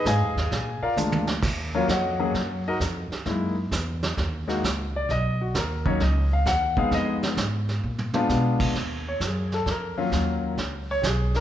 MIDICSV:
0, 0, Header, 1, 5, 480
1, 0, Start_track
1, 0, Key_signature, -6, "minor"
1, 0, Tempo, 457666
1, 1500, Time_signature, 4, 2, 24, 8
1, 11959, End_track
2, 0, Start_track
2, 0, Title_t, "Grand piano"
2, 0, Program_c, 0, 0
2, 70, Note_on_c, 0, 80, 84
2, 71, Note_on_c, 0, 68, 67
2, 76, Note_on_c, 0, 75, 67
2, 77, Note_on_c, 0, 77, 64
2, 515, Note_off_c, 0, 75, 0
2, 830, Note_off_c, 0, 80, 0
2, 831, Note_off_c, 0, 68, 0
2, 833, Note_off_c, 0, 77, 0
2, 866, Note_on_c, 0, 77, 81
2, 868, Note_on_c, 0, 74, 62
2, 870, Note_on_c, 0, 70, 70
2, 873, Note_on_c, 0, 65, 68
2, 1011, Note_off_c, 0, 65, 0
2, 1014, Note_off_c, 0, 77, 0
2, 1015, Note_off_c, 0, 74, 0
2, 1017, Note_off_c, 0, 70, 0
2, 1019, Note_on_c, 0, 56, 64
2, 1022, Note_on_c, 0, 62, 63
2, 1023, Note_on_c, 0, 58, 60
2, 1027, Note_on_c, 0, 65, 66
2, 1314, Note_off_c, 0, 56, 0
2, 1315, Note_off_c, 0, 62, 0
2, 1316, Note_off_c, 0, 58, 0
2, 1318, Note_off_c, 0, 65, 0
2, 1831, Note_on_c, 0, 54, 78
2, 1834, Note_on_c, 0, 58, 68
2, 1836, Note_on_c, 0, 61, 64
2, 1841, Note_on_c, 0, 65, 84
2, 1841, Note_on_c, 0, 73, 70
2, 1848, Note_on_c, 0, 66, 56
2, 1850, Note_on_c, 0, 70, 58
2, 1966, Note_off_c, 0, 54, 0
2, 1967, Note_off_c, 0, 58, 0
2, 1968, Note_off_c, 0, 61, 0
2, 1971, Note_off_c, 0, 65, 0
2, 1982, Note_off_c, 0, 73, 0
2, 1986, Note_off_c, 0, 66, 0
2, 1987, Note_off_c, 0, 70, 0
2, 2004, Note_on_c, 0, 75, 65
2, 2005, Note_on_c, 0, 78, 75
2, 2007, Note_on_c, 0, 66, 61
2, 2011, Note_on_c, 0, 73, 65
2, 2302, Note_on_c, 0, 54, 70
2, 2305, Note_on_c, 0, 58, 64
2, 2306, Note_on_c, 0, 61, 64
2, 2310, Note_on_c, 0, 68, 73
2, 2442, Note_off_c, 0, 54, 0
2, 2443, Note_off_c, 0, 58, 0
2, 2443, Note_off_c, 0, 61, 0
2, 2446, Note_off_c, 0, 68, 0
2, 2757, Note_off_c, 0, 75, 0
2, 2757, Note_off_c, 0, 78, 0
2, 2758, Note_off_c, 0, 66, 0
2, 2760, Note_off_c, 0, 73, 0
2, 2808, Note_on_c, 0, 75, 86
2, 2811, Note_on_c, 0, 63, 72
2, 2812, Note_on_c, 0, 66, 76
2, 2812, Note_on_c, 0, 70, 71
2, 2893, Note_off_c, 0, 75, 0
2, 2895, Note_off_c, 0, 63, 0
2, 2896, Note_off_c, 0, 66, 0
2, 2896, Note_off_c, 0, 70, 0
2, 3418, Note_on_c, 0, 56, 65
2, 3420, Note_on_c, 0, 58, 52
2, 3424, Note_on_c, 0, 64, 66
2, 3425, Note_on_c, 0, 63, 56
2, 3712, Note_off_c, 0, 56, 0
2, 3714, Note_off_c, 0, 58, 0
2, 3716, Note_off_c, 0, 63, 0
2, 3716, Note_off_c, 0, 64, 0
2, 4694, Note_on_c, 0, 56, 72
2, 4701, Note_on_c, 0, 58, 64
2, 4701, Note_on_c, 0, 63, 67
2, 4705, Note_on_c, 0, 66, 75
2, 4837, Note_off_c, 0, 56, 0
2, 4840, Note_off_c, 0, 63, 0
2, 4841, Note_off_c, 0, 58, 0
2, 4842, Note_off_c, 0, 66, 0
2, 5205, Note_on_c, 0, 74, 79
2, 5343, Note_off_c, 0, 74, 0
2, 5359, Note_on_c, 0, 75, 98
2, 5666, Note_off_c, 0, 75, 0
2, 5678, Note_on_c, 0, 66, 60
2, 5819, Note_off_c, 0, 66, 0
2, 5838, Note_on_c, 0, 70, 66
2, 6144, Note_on_c, 0, 54, 69
2, 6144, Note_on_c, 0, 63, 82
2, 6145, Note_off_c, 0, 70, 0
2, 6147, Note_on_c, 0, 61, 67
2, 6148, Note_on_c, 0, 58, 63
2, 6153, Note_on_c, 0, 73, 87
2, 6281, Note_off_c, 0, 63, 0
2, 6282, Note_off_c, 0, 54, 0
2, 6283, Note_off_c, 0, 58, 0
2, 6283, Note_off_c, 0, 61, 0
2, 6297, Note_off_c, 0, 73, 0
2, 6307, Note_on_c, 0, 75, 68
2, 6619, Note_off_c, 0, 75, 0
2, 6641, Note_on_c, 0, 77, 82
2, 6781, Note_off_c, 0, 77, 0
2, 6781, Note_on_c, 0, 78, 96
2, 7096, Note_off_c, 0, 78, 0
2, 7103, Note_on_c, 0, 59, 66
2, 7105, Note_on_c, 0, 63, 71
2, 7106, Note_on_c, 0, 56, 74
2, 7109, Note_on_c, 0, 68, 78
2, 7116, Note_on_c, 0, 77, 86
2, 7258, Note_off_c, 0, 77, 0
2, 7283, Note_on_c, 0, 75, 99
2, 7471, Note_off_c, 0, 75, 0
2, 7705, Note_off_c, 0, 59, 0
2, 7706, Note_off_c, 0, 56, 0
2, 7706, Note_off_c, 0, 63, 0
2, 7708, Note_off_c, 0, 68, 0
2, 8541, Note_on_c, 0, 59, 69
2, 8542, Note_on_c, 0, 56, 74
2, 8544, Note_on_c, 0, 62, 68
2, 8547, Note_on_c, 0, 65, 87
2, 9144, Note_off_c, 0, 56, 0
2, 9144, Note_off_c, 0, 59, 0
2, 9145, Note_off_c, 0, 62, 0
2, 9147, Note_off_c, 0, 65, 0
2, 9528, Note_on_c, 0, 73, 77
2, 9663, Note_off_c, 0, 73, 0
2, 9700, Note_on_c, 0, 68, 56
2, 9996, Note_off_c, 0, 68, 0
2, 10006, Note_on_c, 0, 69, 72
2, 10143, Note_off_c, 0, 69, 0
2, 10180, Note_on_c, 0, 70, 68
2, 10462, Note_on_c, 0, 54, 71
2, 10462, Note_on_c, 0, 58, 65
2, 10466, Note_on_c, 0, 65, 77
2, 10468, Note_on_c, 0, 61, 63
2, 10923, Note_off_c, 0, 70, 0
2, 11065, Note_off_c, 0, 54, 0
2, 11065, Note_off_c, 0, 58, 0
2, 11067, Note_off_c, 0, 65, 0
2, 11068, Note_off_c, 0, 61, 0
2, 11443, Note_on_c, 0, 73, 101
2, 11556, Note_on_c, 0, 67, 49
2, 11581, Note_off_c, 0, 73, 0
2, 11591, Note_off_c, 0, 67, 0
2, 11609, Note_on_c, 0, 68, 69
2, 11910, Note_off_c, 0, 68, 0
2, 11914, Note_on_c, 0, 70, 83
2, 11959, Note_off_c, 0, 70, 0
2, 11959, End_track
3, 0, Start_track
3, 0, Title_t, "Upright bass"
3, 0, Program_c, 1, 32
3, 55, Note_on_c, 1, 44, 100
3, 215, Note_off_c, 1, 44, 0
3, 215, Note_on_c, 1, 41, 56
3, 369, Note_off_c, 1, 41, 0
3, 375, Note_on_c, 1, 39, 68
3, 526, Note_off_c, 1, 39, 0
3, 538, Note_on_c, 1, 46, 81
3, 843, Note_off_c, 1, 46, 0
3, 1012, Note_on_c, 1, 38, 93
3, 1481, Note_off_c, 1, 38, 0
3, 1497, Note_on_c, 1, 39, 79
3, 1964, Note_off_c, 1, 39, 0
3, 1976, Note_on_c, 1, 41, 105
3, 2443, Note_off_c, 1, 41, 0
3, 2457, Note_on_c, 1, 42, 83
3, 2924, Note_off_c, 1, 42, 0
3, 2938, Note_on_c, 1, 41, 97
3, 3243, Note_off_c, 1, 41, 0
3, 3417, Note_on_c, 1, 42, 79
3, 3883, Note_off_c, 1, 42, 0
3, 3895, Note_on_c, 1, 40, 97
3, 4362, Note_off_c, 1, 40, 0
3, 4376, Note_on_c, 1, 39, 90
3, 4842, Note_off_c, 1, 39, 0
3, 4857, Note_on_c, 1, 37, 89
3, 5322, Note_off_c, 1, 37, 0
3, 5338, Note_on_c, 1, 35, 87
3, 5803, Note_off_c, 1, 35, 0
3, 5818, Note_on_c, 1, 39, 101
3, 6282, Note_off_c, 1, 39, 0
3, 6293, Note_on_c, 1, 37, 88
3, 6760, Note_off_c, 1, 37, 0
3, 6773, Note_on_c, 1, 39, 93
3, 7240, Note_off_c, 1, 39, 0
3, 7249, Note_on_c, 1, 41, 86
3, 7717, Note_off_c, 1, 41, 0
3, 7731, Note_on_c, 1, 44, 97
3, 8199, Note_off_c, 1, 44, 0
3, 8217, Note_on_c, 1, 46, 86
3, 8682, Note_off_c, 1, 46, 0
3, 8698, Note_on_c, 1, 47, 95
3, 9162, Note_off_c, 1, 47, 0
3, 9170, Note_on_c, 1, 39, 76
3, 9638, Note_off_c, 1, 39, 0
3, 9652, Note_on_c, 1, 42, 94
3, 10119, Note_off_c, 1, 42, 0
3, 10131, Note_on_c, 1, 41, 84
3, 10599, Note_off_c, 1, 41, 0
3, 10612, Note_on_c, 1, 39, 91
3, 11079, Note_off_c, 1, 39, 0
3, 11090, Note_on_c, 1, 37, 80
3, 11558, Note_off_c, 1, 37, 0
3, 11571, Note_on_c, 1, 35, 97
3, 11959, Note_off_c, 1, 35, 0
3, 11959, End_track
4, 0, Start_track
4, 0, Title_t, "Muted upright bass strokes"
4, 862, Note_on_c, 9, 29, 42
4, 967, Note_off_c, 9, 29, 0
4, 3268, Note_on_c, 9, 29, 42
4, 3373, Note_off_c, 9, 29, 0
4, 11959, End_track
5, 0, Start_track
5, 0, Title_t, "Drums"
5, 57, Note_on_c, 9, 36, 25
5, 60, Note_on_c, 9, 38, 63
5, 62, Note_on_c, 9, 44, 64
5, 162, Note_off_c, 9, 36, 0
5, 165, Note_off_c, 9, 38, 0
5, 167, Note_off_c, 9, 44, 0
5, 391, Note_on_c, 9, 38, 41
5, 496, Note_off_c, 9, 38, 0
5, 536, Note_on_c, 9, 36, 25
5, 541, Note_on_c, 9, 25, 49
5, 541, Note_on_c, 9, 38, 47
5, 641, Note_off_c, 9, 36, 0
5, 646, Note_off_c, 9, 38, 0
5, 1018, Note_on_c, 9, 48, 42
5, 1020, Note_on_c, 9, 44, 55
5, 1123, Note_off_c, 9, 48, 0
5, 1125, Note_off_c, 9, 44, 0
5, 1177, Note_on_c, 9, 48, 64
5, 1281, Note_off_c, 9, 48, 0
5, 1336, Note_on_c, 9, 38, 76
5, 1440, Note_off_c, 9, 38, 0
5, 1495, Note_on_c, 9, 36, 74
5, 1498, Note_off_c, 9, 25, 0
5, 1498, Note_on_c, 9, 25, 46
5, 1498, Note_on_c, 9, 38, 41
5, 1498, Note_on_c, 9, 49, 68
5, 1600, Note_off_c, 9, 36, 0
5, 1603, Note_off_c, 9, 38, 0
5, 1603, Note_off_c, 9, 49, 0
5, 1976, Note_on_c, 9, 36, 18
5, 1980, Note_on_c, 9, 38, 61
5, 1982, Note_on_c, 9, 44, 53
5, 2080, Note_off_c, 9, 36, 0
5, 2085, Note_off_c, 9, 38, 0
5, 2087, Note_off_c, 9, 44, 0
5, 2457, Note_on_c, 9, 36, 21
5, 2459, Note_off_c, 9, 25, 0
5, 2459, Note_on_c, 9, 25, 41
5, 2459, Note_on_c, 9, 38, 48
5, 2562, Note_off_c, 9, 36, 0
5, 2564, Note_off_c, 9, 38, 0
5, 2938, Note_on_c, 9, 36, 20
5, 2941, Note_on_c, 9, 38, 55
5, 2943, Note_on_c, 9, 44, 61
5, 3043, Note_off_c, 9, 36, 0
5, 3046, Note_off_c, 9, 38, 0
5, 3048, Note_off_c, 9, 44, 0
5, 3271, Note_on_c, 9, 38, 41
5, 3376, Note_off_c, 9, 38, 0
5, 3414, Note_off_c, 9, 25, 0
5, 3414, Note_on_c, 9, 25, 42
5, 3414, Note_on_c, 9, 38, 41
5, 3416, Note_on_c, 9, 36, 19
5, 3519, Note_off_c, 9, 38, 0
5, 3521, Note_off_c, 9, 36, 0
5, 3896, Note_on_c, 9, 36, 21
5, 3899, Note_on_c, 9, 38, 65
5, 3902, Note_on_c, 9, 44, 64
5, 4001, Note_off_c, 9, 36, 0
5, 4004, Note_off_c, 9, 38, 0
5, 4006, Note_off_c, 9, 44, 0
5, 4224, Note_on_c, 9, 38, 55
5, 4329, Note_off_c, 9, 38, 0
5, 4377, Note_on_c, 9, 36, 24
5, 4380, Note_off_c, 9, 25, 0
5, 4380, Note_on_c, 9, 25, 55
5, 4380, Note_on_c, 9, 38, 49
5, 4482, Note_off_c, 9, 36, 0
5, 4485, Note_off_c, 9, 38, 0
5, 4709, Note_on_c, 9, 38, 40
5, 4814, Note_off_c, 9, 38, 0
5, 4859, Note_on_c, 9, 36, 19
5, 4866, Note_on_c, 9, 38, 64
5, 4868, Note_on_c, 9, 44, 57
5, 4964, Note_off_c, 9, 36, 0
5, 4971, Note_off_c, 9, 38, 0
5, 4973, Note_off_c, 9, 44, 0
5, 5337, Note_on_c, 9, 36, 21
5, 5343, Note_off_c, 9, 25, 0
5, 5343, Note_on_c, 9, 25, 45
5, 5343, Note_on_c, 9, 38, 41
5, 5442, Note_off_c, 9, 36, 0
5, 5448, Note_off_c, 9, 38, 0
5, 5816, Note_on_c, 9, 36, 22
5, 5818, Note_on_c, 9, 38, 66
5, 5820, Note_on_c, 9, 44, 60
5, 5921, Note_off_c, 9, 36, 0
5, 5923, Note_off_c, 9, 38, 0
5, 5925, Note_off_c, 9, 44, 0
5, 6142, Note_on_c, 9, 36, 58
5, 6247, Note_off_c, 9, 36, 0
5, 6294, Note_off_c, 9, 25, 0
5, 6294, Note_on_c, 9, 25, 50
5, 6294, Note_on_c, 9, 36, 22
5, 6294, Note_on_c, 9, 38, 49
5, 6398, Note_off_c, 9, 36, 0
5, 6399, Note_off_c, 9, 38, 0
5, 6773, Note_on_c, 9, 36, 27
5, 6776, Note_on_c, 9, 38, 60
5, 6778, Note_on_c, 9, 44, 63
5, 6878, Note_off_c, 9, 36, 0
5, 6880, Note_off_c, 9, 38, 0
5, 6883, Note_off_c, 9, 44, 0
5, 7099, Note_on_c, 9, 36, 58
5, 7203, Note_off_c, 9, 36, 0
5, 7251, Note_off_c, 9, 25, 0
5, 7251, Note_on_c, 9, 25, 52
5, 7251, Note_on_c, 9, 38, 43
5, 7252, Note_on_c, 9, 36, 23
5, 7356, Note_off_c, 9, 36, 0
5, 7356, Note_off_c, 9, 38, 0
5, 7580, Note_on_c, 9, 38, 59
5, 7685, Note_off_c, 9, 38, 0
5, 7729, Note_on_c, 9, 38, 61
5, 7731, Note_on_c, 9, 36, 20
5, 7732, Note_on_c, 9, 44, 57
5, 7834, Note_off_c, 9, 38, 0
5, 7836, Note_off_c, 9, 36, 0
5, 7836, Note_off_c, 9, 44, 0
5, 8061, Note_on_c, 9, 38, 42
5, 8166, Note_off_c, 9, 38, 0
5, 8374, Note_on_c, 9, 47, 61
5, 8479, Note_off_c, 9, 47, 0
5, 8533, Note_on_c, 9, 47, 84
5, 8638, Note_off_c, 9, 47, 0
5, 8696, Note_on_c, 9, 38, 49
5, 8698, Note_on_c, 9, 44, 47
5, 8801, Note_off_c, 9, 38, 0
5, 8803, Note_off_c, 9, 44, 0
5, 9020, Note_on_c, 9, 36, 74
5, 9020, Note_on_c, 9, 49, 73
5, 9124, Note_off_c, 9, 36, 0
5, 9125, Note_off_c, 9, 49, 0
5, 9172, Note_on_c, 9, 36, 22
5, 9176, Note_off_c, 9, 25, 0
5, 9176, Note_on_c, 9, 25, 38
5, 9176, Note_on_c, 9, 38, 41
5, 9277, Note_off_c, 9, 36, 0
5, 9281, Note_off_c, 9, 38, 0
5, 9652, Note_on_c, 9, 36, 18
5, 9655, Note_on_c, 9, 38, 63
5, 9658, Note_on_c, 9, 44, 50
5, 9757, Note_off_c, 9, 36, 0
5, 9760, Note_off_c, 9, 38, 0
5, 9762, Note_off_c, 9, 44, 0
5, 9983, Note_on_c, 9, 38, 38
5, 10088, Note_off_c, 9, 38, 0
5, 10133, Note_on_c, 9, 36, 28
5, 10135, Note_off_c, 9, 25, 0
5, 10135, Note_on_c, 9, 25, 45
5, 10135, Note_on_c, 9, 38, 40
5, 10238, Note_off_c, 9, 36, 0
5, 10240, Note_off_c, 9, 38, 0
5, 10612, Note_on_c, 9, 36, 23
5, 10616, Note_on_c, 9, 38, 55
5, 10618, Note_on_c, 9, 44, 43
5, 10717, Note_off_c, 9, 36, 0
5, 10721, Note_off_c, 9, 38, 0
5, 10723, Note_off_c, 9, 44, 0
5, 11091, Note_on_c, 9, 36, 18
5, 11092, Note_off_c, 9, 25, 0
5, 11092, Note_on_c, 9, 25, 49
5, 11092, Note_on_c, 9, 38, 42
5, 11196, Note_off_c, 9, 36, 0
5, 11197, Note_off_c, 9, 38, 0
5, 11571, Note_on_c, 9, 36, 22
5, 11571, Note_on_c, 9, 38, 63
5, 11574, Note_on_c, 9, 44, 57
5, 11676, Note_off_c, 9, 36, 0
5, 11676, Note_off_c, 9, 38, 0
5, 11678, Note_off_c, 9, 44, 0
5, 11897, Note_on_c, 9, 38, 39
5, 11959, Note_off_c, 9, 25, 0
5, 11959, Note_off_c, 9, 38, 0
5, 11959, End_track
0, 0, End_of_file